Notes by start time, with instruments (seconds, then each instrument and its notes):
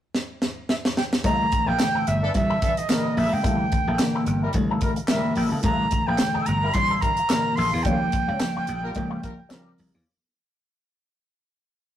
0.15 snare
0.42 snare
0.69 flute E5, snare
0.85 snare
0.97 flute G5, snare
1.13 snare
1.24 slap bass C2, reed electric piano A#2 D3 E3 A3, clean electric guitar A#3 E4 A4, flute A#5, kick, closed hi-hat
1.39 muted clean electric guitar stroke
1.51 muted clean electric guitar stroke, kick, closed hi-hat
1.66 slap bass A#1, clean electric guitar A#3 E4 A#4, flute G5
1.79 reed electric piano A#2 D3 E3 A3, muted clean electric guitar stroke, snare, clap, closed hi-hat, tambourine
1.95 clean electric guitar A#3 E4 A4, muted slap bass stroke
2.07 slap bass G1, flute E5, muted clean electric guitar stroke, closed hi-hat
2.23 horn section E3 D4 A4, muted clean electric guitar stroke
2.34 slap bass C2, reed electric piano A#2 D3 D#3 G3, flute E5, muted clean electric guitar stroke, kick, closed hi-hat
2.41 reed electric piano E3
2.50 clean electric guitar A#3 E4 A4
2.62 horn section E3 D4 A4, kick, closed hi-hat
2.77 flute D#5, muted clean electric guitar stroke, closed hi-hat
2.89 reed electric piano A#2 D3 E3 A#3, horn section G3 E4 A#4, muted clean electric guitar stroke, snare, clap, closed hi-hat, tambourine
3.05 muted clean electric guitar stroke
3.17 slap bass A#1, clean electric guitar A#3 E4 A4, flute E5, open hi-hat
3.32 slap bass C#2, flute G5, muted clean electric guitar stroke
3.43 slap bass C2, reed electric piano A#2 D3 D#3 A3, clean electric guitar A#3 E4 A4, kick, closed hi-hat
3.51 reed electric piano E3
3.59 muted clean electric guitar stroke
3.72 muted clean electric guitar stroke, kick, closed hi-hat
3.87 slap bass A#1, clean electric guitar A#3 E4 A4
3.99 reed electric piano A#2 D3 E3 A#3, muted clean electric guitar stroke, snare, clap, closed hi-hat, tambourine
4.15 clean electric guitar A#3 E4 A4
4.26 slap bass G1, closed hi-hat
4.42 horn section G3 E4 A#4, muted clean electric guitar stroke
4.53 slap bass C2, reed electric piano A#2 D3 E3 A3, muted clean electric guitar stroke, kick, closed hi-hat
4.71 clean electric guitar A#3 E4 A4
4.81 horn section G3 E4 A#4, kick, closed hi-hat
4.96 muted clean electric guitar stroke, closed hi-hat
5.08 reed electric piano A#2 D3 E3 G#3, horn section G3 E4 A#4, flute E5, muted clean electric guitar stroke, snare, clap, closed hi-hat, tambourine
5.16 reed electric piano A#3
5.25 muted clean electric guitar stroke
5.35 slap bass A#1, clean electric guitar A#3 E4 A4, flute G5, open hi-hat
5.52 slap bass C#2, clean electric guitar A#3 E4 A4
5.63 slap bass C2, reed electric piano A#2 D3 E3 A3, clean electric guitar A#3 E4 A4, flute A#5, kick, closed hi-hat
5.79 muted clean electric guitar stroke
5.91 muted clean electric guitar stroke, kick, closed hi-hat
6.07 slap bass A#1, clean electric guitar A#3 E4 A#4, flute G5
6.18 reed electric piano A#2 D3 E3 A3, muted clean electric guitar stroke, snare, clap, closed hi-hat, tambourine
6.34 clean electric guitar A#3 E4 A4, muted slap bass stroke
6.46 slap bass G1, flute A#5, closed hi-hat
6.62 horn section G3 E4 A#4, muted clean electric guitar stroke
6.73 slap bass C2, reed electric piano A#2 D3 E3 G3, flute C6, muted clean electric guitar stroke, kick, closed hi-hat
6.90 clean electric guitar A#3 E4 A4
7.01 horn section G3 E4 A#4, flute A#5, muted clean electric guitar stroke, kick, closed hi-hat
7.17 muted clean electric guitar stroke, closed hi-hat
7.29 reed electric piano A#2 D3 E3 A#3, horn section G3 E4 A#4, muted clean electric guitar stroke, snare, clap, closed hi-hat, tambourine
7.46 muted clean electric guitar stroke
7.56 slap bass A#1, clean electric guitar A#3 E4 A4, flute C6, open hi-hat
7.73 slap bass E2, muted clean electric guitar stroke
7.83 slap bass D#2, reed electric piano C#3 F3 G3 A3, clean electric guitar G3 C#4 F4, flute G5, kick, closed hi-hat
7.92 reed electric piano A#3
8.01 muted clean electric guitar stroke
8.12 muted clean electric guitar stroke, kick, closed hi-hat
8.28 slap bass C#2, clean electric guitar G3 C#4 F4
8.40 reed electric piano C#3 F3 G3 A#3, muted clean electric guitar stroke, snare, clap, closed hi-hat, tambourine
8.56 clean electric guitar G3 C#4 F4, muted slap bass stroke
8.67 slap bass A#1, muted clean electric guitar stroke, closed hi-hat
8.84 horn section G3 F4 A#4, muted clean electric guitar stroke
8.95 slap bass C#2, reed electric piano C#3 F3 G3 A#3, muted clean electric guitar stroke, kick, closed hi-hat
9.10 clean electric guitar G3 C#4 F4
9.23 horn section G3 F4 A#4, muted clean electric guitar stroke, kick, closed hi-hat
9.38 muted clean electric guitar stroke
9.49 reed electric piano C#3 F3 G3 C4, clean electric guitar G3 C#4 G4, horn section G3 F4 A#4, snare, clap, closed hi-hat, tambourine
9.78 slap bass C2, muted clean electric guitar stroke, open hi-hat
9.94 slap bass E2, clean electric guitar G3 C#4 F4